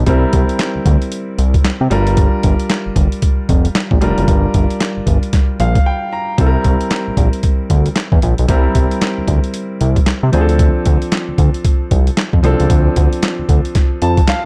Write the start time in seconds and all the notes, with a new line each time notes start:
Already playing: A#4
0.06 C2 G3 C4 E4 A#4, kick, closed hi-hat
0.33 C2, kick, closed hi-hat
0.49 closed hi-hat
0.59 snare, clap, closed hi-hat
0.76 D2
0.85 D2, kick, closed hi-hat
1.02 closed hi-hat
1.12 closed hi-hat
1.38 C2, closed hi-hat
1.54 kick, closed hi-hat
1.65 snare, clap, closed hi-hat
1.81 C3
1.90 G1 G3 D4 F4 A#4, closed hi-hat
2.07 closed hi-hat
2.17 kick, closed hi-hat
2.43 G1, kick, closed hi-hat
2.60 closed hi-hat
2.70 snare, clap, closed hi-hat
2.86 G1
2.96 G1, kick, closed hi-hat
3.12 closed hi-hat
3.22 kick, closed hi-hat
3.49 F1, kick, closed hi-hat
3.65 closed hi-hat
3.75 snare, clap, closed hi-hat
3.91 A#1, kick
4.01 F1 G3 D4 F4 A#4, closed hi-hat
4.18 F#1, closed hi-hat
4.28 G1, kick, closed hi-hat
4.54 G1, kick, closed hi-hat
4.70 closed hi-hat
4.80 snare, clap, closed hi-hat
4.97 G1
5.07 G1, kick, closed hi-hat
5.23 closed hi-hat
5.33 kick, snare, closed hi-hat
5.60 A#1 F5, closed hi-hat
5.75 kick, closed hi-hat
5.86 G5
6.13 A#5
6.38 C2 G3 C4 E4 A4, kick, closed hi-hat
6.47 A#4
6.64 C2, kick, closed hi-hat
6.81 closed hi-hat
6.91 snare, clap, closed hi-hat
7.07 A#1
7.17 A#1, kick, closed hi-hat
7.33 closed hi-hat
7.43 kick, closed hi-hat
7.70 D2, kick, closed hi-hat
7.86 closed hi-hat
7.96 snare, clap, closed hi-hat
8.12 E2, kick
8.22 A#1, closed hi-hat
8.38 B1, closed hi-hat
8.48 C2 G3 C4 E4 A#4, kick, closed hi-hat
8.75 C2, kick, closed hi-hat
8.91 closed hi-hat
9.01 snare, clap, closed hi-hat
9.18 D2
9.28 D2, kick, closed hi-hat
9.44 closed hi-hat
9.54 closed hi-hat
9.81 C2, closed hi-hat
9.96 kick, closed hi-hat
10.07 snare, clap, closed hi-hat
10.23 C3
10.32 D2 F3 C4 D4 G#4, closed hi-hat
10.41 A4
10.49 closed hi-hat
10.59 kick, closed hi-hat
10.86 D2, kick, closed hi-hat
11.02 closed hi-hat
11.12 snare, clap, closed hi-hat
11.28 D2
11.38 D2, kick, closed hi-hat
11.54 closed hi-hat
11.65 kick, closed hi-hat
11.91 C2, kick, closed hi-hat
12.07 closed hi-hat
12.17 snare, clap, closed hi-hat
12.33 F2, kick
12.43 C2 F3 C4 D4 A4, closed hi-hat
12.60 C#2, closed hi-hat
12.70 D2, kick, closed hi-hat
12.96 D2, kick, closed hi-hat
13.13 closed hi-hat
13.23 snare, clap, closed hi-hat
13.39 D2
13.49 D2, kick, closed hi-hat
13.65 closed hi-hat
13.75 kick, snare, closed hi-hat
14.02 F2 A5, closed hi-hat
14.17 kick, closed hi-hat
14.28 F5, snare, clap, closed hi-hat